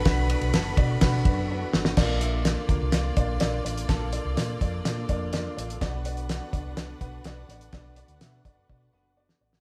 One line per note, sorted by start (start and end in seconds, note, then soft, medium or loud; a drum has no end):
0.00 1.94 D3 medium
0.00 1.94 B3 medium
0.00 1.94 F#4 medium
0.00 1.69 B4 loud
0.00 1.69 B5 loud
0.05 0.33 B1 loud
0.05 0.24 D4 loud
0.05 0.25 F#4 loud
0.05 0.25 B4 loud
0.05 kick loud
0.05 snare loud
0.05 ride medium
0.30 0.49 D4 medium
0.30 0.49 F#4 medium
0.30 0.49 B4 loud
0.30 ride medium
0.41 0.51 B1 medium
0.41 ride soft
0.53 0.72 F#1 loud
0.53 0.73 D4 medium
0.53 0.73 F#4 medium
0.53 0.73 A4 medium
0.53 snare loud
0.53 ride medium
0.77 0.96 B2 loud
0.77 0.97 D4 medium
0.77 0.97 F#4 medium
0.77 0.97 D5 medium
0.77 kick loud
0.77 ride medium
1.01 1.20 B2 loud
1.01 1.20 D4 loud
1.01 1.20 F#4 loud
1.01 1.20 B4 loud
1.01 kick medium
1.01 snare loud
1.01 ride medium
1.25 1.63 F#2 loud
1.25 1.44 D4 medium
1.25 1.45 F#4 medium
1.25 1.45 B4 loud
1.25 kick loud
1.25 ride medium
1.50 1.69 D4 medium
1.50 1.69 F#4 medium
1.50 1.69 B4 loud
1.73 1.92 G1 medium
1.73 1.93 D4 medium
1.73 1.93 F#4 medium
1.73 1.93 B4 medium
1.73 snare loud
1.85 snare loud
1.96 2.54 A#1 loud
1.96 9.60 D3 medium
1.96 3.87 A#3 medium
1.96 5.77 A#3 medium
1.96 2.16 A#3 loud
1.96 2.16 D4 loud
1.96 5.77 F4 medium
1.96 2.16 F4 loud
1.96 5.77 D5 medium
1.96 2.16 D5 loud
1.96 kick loud
1.96 snare loud
1.96 crash medium
2.21 2.40 A#3 medium
2.21 2.40 D4 medium
2.21 2.40 F4 medium
2.21 2.40 E5 medium
2.21 closed hi-hat medium
2.45 2.64 A#3 medium
2.45 2.64 D4 medium
2.45 2.64 F4 medium
2.45 2.64 D5 medium
2.45 snare loud
2.45 closed hi-hat medium
2.69 2.78 D2 medium
2.69 2.88 A#3 medium
2.69 2.88 D4 medium
2.69 2.88 F4 medium
2.69 2.88 A#4 medium
2.69 kick loud
2.69 closed hi-hat medium
2.81 3.09 C2 loud
2.92 3.12 A#3 medium
2.92 3.12 D4 medium
2.92 3.12 F4 medium
2.92 3.13 D5 medium
2.92 snare loud
2.92 closed hi-hat loud
3.17 3.36 A#1 loud
3.17 3.36 A#3 loud
3.17 3.36 D4 loud
3.17 3.36 F4 loud
3.17 3.36 D5 loud
3.17 kick loud
3.17 closed hi-hat medium
3.40 3.60 A#1 medium
3.40 3.60 A#3 loud
3.40 3.60 D4 loud
3.40 3.60 F4 medium
3.40 3.60 D5 loud
3.40 snare loud
3.40 closed hi-hat medium
3.64 3.84 A1 loud
3.64 3.84 A#3 medium
3.64 3.84 D4 medium
3.64 3.84 F4 medium
3.64 3.84 D5 medium
3.64 closed hi-hat medium
3.78 closed hi-hat medium
3.88 4.17 A#1 loud
3.88 4.07 A#3 loud
3.88 4.07 D4 medium
3.88 4.08 F4 loud
3.88 4.08 A4 loud
3.88 5.79 A4 medium
3.88 kick loud
3.88 snare loud
3.88 closed hi-hat medium
4.12 4.31 A#3 medium
4.12 4.32 D4 medium
4.12 4.32 F4 medium
4.12 4.32 D5 medium
4.12 closed hi-hat medium
4.25 4.34 C2 loud
4.36 4.56 A#2 medium
4.36 4.55 A#3 medium
4.36 4.56 D4 medium
4.36 4.56 F4 medium
4.36 4.56 D5 medium
4.36 snare loud
4.36 closed hi-hat medium
4.61 4.80 F2 medium
4.61 4.80 A#3 medium
4.61 4.80 D4 medium
4.61 4.80 F4 medium
4.61 4.80 D5 medium
4.61 kick loud
4.61 closed hi-hat medium
4.85 5.04 A#2 loud
4.85 5.04 A#3 medium
4.85 5.04 D4 medium
4.85 5.04 F4 medium
4.85 5.04 D5 medium
4.85 snare loud
4.85 closed hi-hat loud
5.09 5.46 F2 medium
5.09 5.28 A#3 loud
5.09 5.28 D4 loud
5.09 5.28 F4 loud
5.09 5.28 D5 loud
5.09 kick medium
5.09 closed hi-hat medium
5.33 5.52 A#3 loud
5.33 5.52 D4 loud
5.33 5.52 F4 loud
5.33 5.52 D5 loud
5.33 snare loud
5.33 closed hi-hat medium
5.57 5.76 A1 medium
5.57 5.76 A#3 medium
5.57 5.76 D4 medium
5.57 5.76 F4 medium
5.57 5.76 D5 medium
5.57 closed hi-hat medium
5.70 closed hi-hat medium
5.81 6.38 B1 loud
5.81 6.00 B3 loud
5.81 9.60 B3 medium
5.81 9.60 D4 medium
5.81 6.00 D4 medium
5.81 6.00 F#4 loud
5.81 9.60 F#4 medium
5.81 9.60 B4 medium
5.81 6.00 D5 loud
5.81 9.60 F#5 medium
5.81 kick loud
5.81 snare loud
5.81 closed hi-hat medium
6.05 6.24 B3 medium
6.05 6.24 D4 medium
6.05 6.24 F#4 medium
6.05 6.24 D5 medium
6.05 closed hi-hat medium
6.17 closed hi-hat soft
6.29 6.48 B3 medium
6.29 6.48 D4 medium
6.29 6.48 F#4 medium
6.29 6.48 D5 medium
6.29 snare loud
6.29 closed hi-hat medium
6.52 6.65 D2 medium
6.52 6.72 B3 medium
6.52 6.72 D4 medium
6.52 6.72 F#4 medium
6.52 6.72 D5 medium
6.52 kick loud
6.52 closed hi-hat medium
6.65 6.93 C2 medium
6.77 6.96 B3 medium
6.77 6.96 D4 medium
6.77 6.96 F#4 medium
6.77 6.96 D5 medium
6.77 snare loud
6.77 closed hi-hat loud
7.01 7.20 B1 medium
7.01 7.20 B3 loud
7.01 7.20 D4 loud
7.01 7.20 F#4 loud
7.01 7.20 B4 loud
7.01 kick medium
7.01 closed hi-hat medium
7.24 7.43 B1 loud
7.24 7.44 B3 loud
7.24 7.44 D4 loud
7.24 7.44 F#4 loud
7.24 7.45 D5 loud
7.24 snare loud
7.24 closed hi-hat medium
7.49 7.67 A1 medium
7.49 7.68 B3 medium
7.49 7.69 D4 medium
7.49 7.69 F#4 medium
7.49 7.69 D5 medium
7.49 snare soft
7.49 closed hi-hat medium
7.61 closed hi-hat medium
7.73 8.01 B1 loud
7.73 7.92 B3 loud
7.73 7.92 D4 loud
7.73 7.92 F#4 medium
7.73 7.93 D5 loud
7.73 kick loud
7.73 snare loud
7.73 closed hi-hat medium
7.96 8.16 B3 medium
7.96 8.16 D4 medium
7.96 8.16 F#4 medium
7.96 8.16 D5 loud
7.96 closed hi-hat medium
8.08 8.18 D2 medium
8.08 closed hi-hat soft
8.21 8.40 B2 loud
8.21 8.40 B3 medium
8.21 8.40 D4 medium
8.21 8.40 F#4 medium
8.21 8.40 E5 medium
8.21 snare loud
8.21 closed hi-hat medium
8.45 8.64 B3 medium
8.45 8.64 D4 medium
8.45 8.64 F#4 medium
8.45 8.64 D5 loud
8.45 kick loud
8.45 closed hi-hat medium
8.69 8.88 B2 loud
8.69 8.88 B3 medium
8.69 8.88 D4 medium
8.69 8.88 F#4 medium
8.69 8.88 D5 medium
8.69 kick medium
8.93 9.12 B3 loud
8.93 9.12 D4 loud
8.93 9.12 F#4 loud
8.93 9.12 B4 loud
9.17 9.36 B3 loud
9.17 9.36 D4 medium
9.17 9.36 F#4 medium
9.17 9.36 D5 loud
9.29 snare medium
9.41 9.59 A1 medium
9.41 9.60 B3 medium
9.41 9.60 D4 medium
9.41 9.60 F#4 medium
9.41 9.60 D5 medium
9.53 snare medium